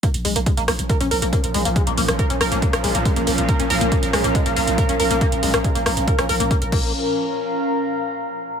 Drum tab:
CC |----------------|----------------|----------------|--------------x-|
HH |xxoxxxoxxxoxxxox|xxoxxxoxxxoxxxox|xxoxxxoxxxoxxxox|xxoxxxoxxxoxxx--|
SD |------r---------|---r--r--r------|------r---------|---r--r--r------|
BD |o---o---o---o---|o---o---o---o---|o---o---o---o---|o---o---o---o-o-|

CC |----------------|
HH |----------------|
SD |----------------|
BD |----------------|